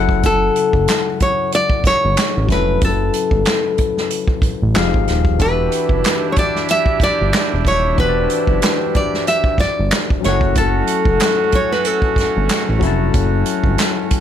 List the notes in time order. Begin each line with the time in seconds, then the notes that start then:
Already playing: F#1 C#3 F#3 E4 A4 F#5
0.09 kick
0.23 A4, kick, closed hi-hat
0.56 closed hi-hat
0.73 F#1, kick
0.88 snare, clap, closed hi-hat
1.20 C#5, kick, closed hi-hat
1.52 D5, closed hi-hat
1.70 kick
1.84 G1 C#5, kick, snare, closed hi-hat
2.05 G1
2.17 snare, clap, closed hi-hat
2.37 A1
2.47 F1 F#3 C#4 E4, kick, snare, closed hi-hat
2.52 A4 B4
2.81 F#1 A4, kick, closed hi-hat
3.14 closed hi-hat
3.31 G1, kick
3.45 snare, clap, closed hi-hat
3.78 kick, closed hi-hat
3.97 snare
4.10 closed hi-hat
4.28 kick
4.42 A1, kick, closed hi-hat
4.62 A1
4.74 F1 F3 D#4 G4 G#4, snare, clap, closed hi-hat
4.78 F5
4.94 G#1, kick
5.08 D#1, snare, closed hi-hat
5.25 kick
5.37 E1 E3 D4 E4 F#4 G4, kick, closed hi-hat
5.42 G4 B4 D5
5.51 E5
5.72 closed hi-hat
5.89 F#1, kick
6.04 snare, clap, closed hi-hat
6.32 C#5
6.36 D5, kick, closed hi-hat
6.56 snare
6.69 E5, closed hi-hat
6.86 kick
7.00 G1 D5, kick, snare, closed hi-hat
7.21 G1
7.33 snare, clap, closed hi-hat
7.54 E1
7.65 D#1 C#5, kick, closed hi-hat
7.95 E3 D4 F#4, kick, closed hi-hat
7.99 E1 G4 B4 C5
8.09 D5
8.30 closed hi-hat
8.47 F#1, kick
8.62 snare, clap, closed hi-hat
8.95 D5, kick, closed hi-hat
9.14 snare
9.27 E5, closed hi-hat
9.44 kick
9.58 G1 D5, kick, snare, closed hi-hat
9.80 G1
9.91 snare, clap, closed hi-hat
10.10 F#1, kick
10.20 F#3 A3 C#4 F#4, snare, closed hi-hat
10.25 F#1 E4 A4 C#5 F#5
10.41 kick
10.55 A4, kick, closed hi-hat
10.87 closed hi-hat
11.05 F#1, kick
11.20 snare, clap, closed hi-hat
11.52 C#5, kick, closed hi-hat
11.72 B4, snare
11.85 A4, closed hi-hat
12.02 kick
12.16 G1, kick, snare, closed hi-hat
12.37 G1
12.49 snare, clap, closed hi-hat
12.69 A1
12.79 F1 F#3 C#4 E4, kick, snare, closed hi-hat
12.85 A4 A5
13.14 F#1, kick, closed hi-hat
13.46 closed hi-hat
13.64 G1, kick
13.78 snare, clap, closed hi-hat
14.11 kick, closed hi-hat